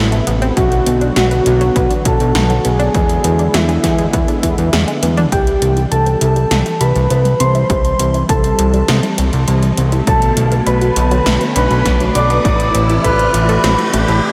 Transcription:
Already playing: A1 C3 A3 B3 E4 A4
0.12 A3, closed hi-hat
0.27 A1 B3, closed hi-hat
0.42 C4, closed hi-hat
0.57 B1 D3 F#3 B3 F#4, kick, closed hi-hat
0.72 closed hi-hat
0.86 B1 B3, closed hi-hat
1.01 D4, closed hi-hat
1.16 B1 F#4, snare, closed hi-hat
1.31 B4, closed hi-hat
1.46 B1, closed hi-hat
1.61 F#3, closed hi-hat
1.76 B1 B3, kick, closed hi-hat
1.90 D4, closed hi-hat
2.05 B1 F#4 A4, kick, closed hi-hat
2.20 B1, closed hi-hat
2.35 B1 B4, snare, closed hi-hat
2.50 F#3, closed hi-hat
2.65 B1 B3 G#4, closed hi-hat
2.79 D4, closed hi-hat
2.94 E2 D3 G#3 B3 E4, kick, closed hi-hat
3.09 closed hi-hat
3.24 E2 B3, closed hi-hat
3.39 D4, closed hi-hat
3.54 E2 E4, snare, closed hi-hat
3.69 G#4, closed hi-hat
3.84 E2, kick, snare, closed hi-hat
3.99 G#3, closed hi-hat
4.13 E2 B3, kick, closed hi-hat
4.28 D4, closed hi-hat
4.43 E2 E4, kick, closed hi-hat
4.58 E2, closed hi-hat
4.73 E2 G#4, snare, closed hi-hat
4.88 G#3, closed hi-hat
5.02 E2 B3, closed hi-hat, high tom
5.17 D4, closed hi-hat, mid tom
5.32 C2 E3 G3 C4 G4 G5, kick, closed hi-hat, riser
5.47 closed hi-hat
5.62 C2 C4, closed hi-hat
5.77 E4, closed hi-hat
5.91 C2 G4 A4 A5, closed hi-hat
6.06 C5, closed hi-hat
6.21 C2, closed hi-hat
6.36 G3, closed hi-hat
6.51 C2 C4, snare, closed hi-hat
6.66 E4, closed hi-hat
6.81 C2 G4 B4 B5, closed hi-hat
6.96 C2, closed hi-hat
7.10 C2 C5, closed hi-hat
7.25 G3, closed hi-hat
7.40 C2 C4 C5 C6, closed hi-hat
7.55 E4, closed hi-hat
7.70 C2 G3, kick, closed hi-hat
7.85 closed hi-hat
7.99 C2 C4, closed hi-hat
8.14 E4, closed hi-hat
8.29 C2 G4 A4 A5, kick, closed hi-hat
8.44 C5, closed hi-hat
8.59 C2, closed hi-hat
8.74 G3, closed hi-hat
8.88 C2 C4, snare, closed hi-hat
9.03 E4, closed hi-hat
9.18 C2 G4, closed hi-hat
9.33 C2, closed hi-hat
9.48 C2 C5, closed hi-hat
9.63 G3, closed hi-hat
9.77 C2 C4, closed hi-hat
9.92 E4, closed hi-hat
10.07 B1 D3 F#3 A3 B3 F#4 A4 A5, kick, closed hi-hat
10.22 closed hi-hat
10.37 B1 A3, closed hi-hat
10.52 B3, closed hi-hat
10.66 B1 D4 B4 B5, closed hi-hat
10.81 F#4, closed hi-hat
10.96 B1, closed hi-hat
11.11 F#3, closed hi-hat
11.26 B1 A3, snare, closed hi-hat
11.41 B3, closed hi-hat
11.56 B1 D4 B4 B5, closed hi-hat
11.71 B1, closed hi-hat
11.85 B1 F#4, kick, snare, closed hi-hat
12.00 F#3, closed hi-hat
12.15 B1 A3 D5 D6, closed hi-hat
12.30 B3, closed hi-hat
12.45 A1 C3 E3 A3 E4, kick, closed hi-hat
12.60 closed hi-hat
12.74 A1 C4, closed hi-hat
12.89 E4, closed hi-hat
13.04 A1 A4 B4 B5, kick, closed hi-hat
13.19 C5, closed hi-hat
13.34 A1, closed hi-hat
13.49 A3, closed hi-hat
13.64 A1 C4, snare, closed hi-hat
13.78 E4, closed hi-hat
13.93 A1 A3, closed hi-hat
14.08 A1 A3, closed hi-hat

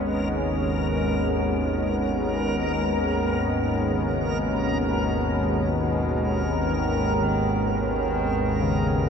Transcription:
Already playing: G#1 D#2 D#3 G#3 B3 C#4 A#4
0.13 C#3
1.08 B2
2.03 D#3
2.99 D#3
3.91 C#3
4.85 B2
5.80 B2
6.70 D#3 E3
7.21 D#3
7.68 D#3
8.61 C#3

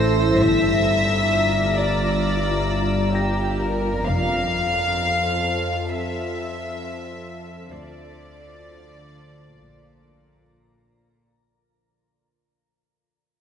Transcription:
Already playing: A1 A2 E4 A4 C5 E5 E6 G6 A#6
0.40 G1 G2 F4 D5 E5 A#5
1.78 D5
3.13 G4 A#6
3.60 A#4
4.07 F1 F2 F4 A4 C5 F5
5.88 E5
7.71 D2 D3 F4 D5 C7
9.56 A#1 A#2 A#4 A#5

